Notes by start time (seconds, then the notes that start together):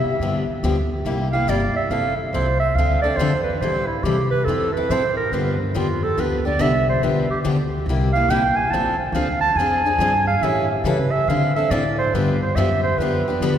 Already playing: E5
0.05 muted upright bass stroke
0.19 G2 D3 F3 B3 D4 G4
0.48 muted upright bass stroke
0.63 D2 D3 F3 B3 D4 G4
1.05 C2 C3 G3 A#3 E4 G4
1.32 A#3 E4 G4 F5
1.47 G1 C3 G3 A#3 E4 G4 D5
1.75 E5, muted upright bass stroke
1.90 F1 F3 C4 E4 A4 F5
2.17 A4
2.33 C2 F3 C4 E4 A4 C5
2.60 E5
2.75 D2 D3 C4 F5
2.79 F3 D4 A4
3.02 D4 A4 D5
3.06 C4
3.17 F2 D3 F3 C4 D4 C5
3.21 A4
3.43 B4
3.61 A2 E3 G3 C4 E4 A4 C5
3.87 E4
4.03 C3 E3 G3 C4 E4 G4 A4
4.31 B4
4.45 F2 F3 E4 A4
4.49 C4 A4
4.74 E4 A4 B4
4.78 C4
4.90 A2 F3 C4 E4 A4 C5
5.17 A#4
5.32 G2 D3 F3 B3 D4 G4 B4
5.61 D4
5.74 F2 D3 F3 B3 D4 F4 G4
6.03 A4
6.17 D2 D3 F3 B3 D4 G4 B4
6.45 B3 D4 G4 D5
6.59 C2 D3 F3 B3 D4 G4 E5
6.89 C5
7.02 B1 D3 F3 B3 D4 G4 B4
7.30 G4, muted upright bass stroke
7.44 D2 D3 F3 B3 D4 G4
7.86 C2 C3 G3
7.90 A#3 E4 G4
8.13 A#3 E4 G4 F5
8.28 A#1 C3 G3 A#3 E4 G4 G5
8.56 G#5
8.71 A1 F3 C4 D4 A4 A5
8.98 C5, muted upright bass stroke
9.12 D2 F3 C4 D4 A4 F5
9.41 A5
9.55 F2 F3 G#5
9.60 C4 D4 G#4
9.86 C4 D4 G#4
9.98 G2 F3 C4 D4 G#4
10.27 F5
10.41 A2 E3 G3 C#4 E4 A4 E5
10.71 G4
10.84 C#3 E3 G3 C#4 E4 A4 B4
11.11 E5, muted upright bass stroke
11.28 D3 F3 C4 D4 A4 F5
11.56 C4 D4 A4 E5
11.71 A2 D3 F3 C4 D4 A4 D5
11.98 C5
12.13 G2 D3 F3 B3 D4 G4 B4
12.42 C5
12.56 F#2 D3 F3 B3 D4 G4 E5
12.83 C5
12.98 F2 D3 F3 B3 G4 B4
13.02 D4
13.28 B3 D4 G4
13.41 D2 D3 F3 B3 D4 G4